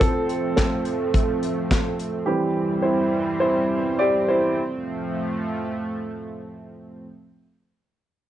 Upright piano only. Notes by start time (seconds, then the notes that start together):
0.00 F3 A3 C4 A4
0.56 C4 A4
2.26 E3 G3 C4 G4
2.82 E4 C5
3.40 E4 C5
3.99 G4 D5
4.29 E4 C5